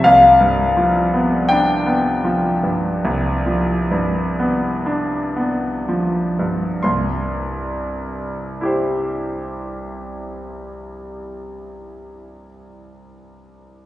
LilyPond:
<<
  \new Staff \with { instrumentName = "Grand piano" } { \time 4/4 \key c \major \tempo 4 = 34 << { f''4 g''2. | c'''1 | } \\ { r1 | r4 <e' g' c''>2. | } >> }
  \new Staff \with { instrumentName = "Grand piano" } { \clef bass \time 4/4 \key c \major c,16 g,16 f16 b16 d'16 b16 f16 g,16 c,16 f16 g,16 b16 d'16 b16 f16 g,16 | <c, g,>1 | }
>>